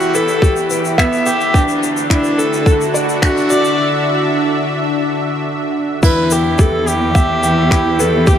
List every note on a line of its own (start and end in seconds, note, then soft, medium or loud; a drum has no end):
0.00 1.51 E2 medium
0.00 1.55 E3 medium
0.00 1.56 E4 medium
0.00 3.34 E4 medium
0.00 0.16 F#4 medium
0.00 0.42 G4 medium
0.00 1.55 G4 medium
0.00 2.64 B4 medium
0.00 0.98 E5 medium
0.00 1.26 G5 medium
0.00 shaker soft
0.14 0.42 A4 loud
0.14 0.41 B4 medium
0.14 shaker medium
0.28 shaker soft
0.42 0.69 G4 loud
0.42 kick loud
0.42 shaker medium
0.56 shaker soft
0.70 0.86 B4 medium
0.70 shaker medium
0.85 shaker soft
0.98 1.28 B3 medium
0.98 1.14 E5 loud
0.98 finger snap medium
0.98 kick loud
0.98 shaker medium
1.13 shaker soft
1.26 1.55 G4 loud
1.26 1.53 G5 medium
1.26 shaker medium
1.41 shaker soft
1.54 3.79 D2 loud
1.54 6.03 D3 medium
1.54 1.81 D4 medium
1.54 kick medium
1.54 shaker soft
1.68 shaker soft
1.76 6.03 F#4 medium
1.83 shaker medium
1.97 6.76 D4 medium
1.97 shaker soft
2.10 2.40 D4 medium
2.10 2.26 E4 medium
2.10 finger snap medium
2.10 kick loud
2.10 shaker medium
2.24 shaker soft
2.38 2.67 A4 loud
2.38 7.16 E5 medium
2.38 shaker medium
2.53 shaker soft
2.66 2.93 A4 medium
2.66 kick loud
2.66 shaker medium
2.81 shaker soft
2.94 3.21 D5 medium
2.94 shaker medium
3.09 shaker soft
3.22 3.49 D4 medium
3.22 3.52 F#4 medium
3.22 finger snap medium
3.22 kick loud
3.22 shaker medium
3.37 shaker soft
3.50 3.77 F#4 medium
3.50 3.79 D5 loud
3.50 shaker medium
3.65 shaker soft
6.03 8.38 E2 medium
6.03 8.38 E3 medium
6.03 6.30 E4 medium
6.03 6.33 B4 medium
6.03 kick loud
6.03 crash loud
6.03 shaker medium
6.31 6.61 G4 medium
6.31 shaker medium
6.47 8.38 E4 medium
6.47 8.38 G4 medium
6.58 6.75 G4 medium
6.58 6.90 A4 medium
6.58 kick loud
6.58 shaker medium
6.87 8.01 G4 medium
6.87 shaker medium
7.15 7.42 E5 medium
7.15 kick loud
7.15 shaker medium
7.34 8.38 B4 medium
7.43 7.70 G5 medium
7.43 shaker medium
7.71 7.98 E4 medium
7.71 finger snap medium
7.71 kick loud
7.71 shaker medium
7.99 8.29 A4 medium
7.99 8.26 B4 medium
7.99 shaker medium
8.27 8.38 G4 loud
8.27 8.38 G4 medium
8.27 kick loud
8.27 shaker medium